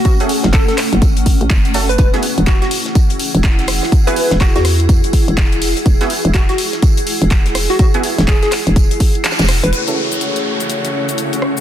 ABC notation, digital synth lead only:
X:1
M:4/4
L:1/16
Q:"Swing 16ths" 1/4=124
K:Emix
V:1 name="Digital synth lead"
F z3 A A z8 z B | B z3 F F z8 z2 | z B3 F F z8 z2 | z4 F F z8 z F |
F z3 G G z8 z B | B z12 z3 |]